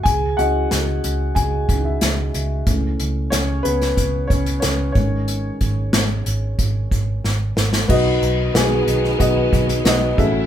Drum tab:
CC |----------------|----------------|----------------|x---------------|
HH |x-x-x-x-x-x-x-x-|x-x-x-xxx-xxx-x-|x-x-x-x-x-x-----|--x-x-x-x-xxx-x-|
SD |----o-------o---|----o--o----o---|----o-------o-oo|----o--o----o---|
BD |o-------o-o-----|o-------o-o---o-|--o-----o-o-----|o-------o-o---o-|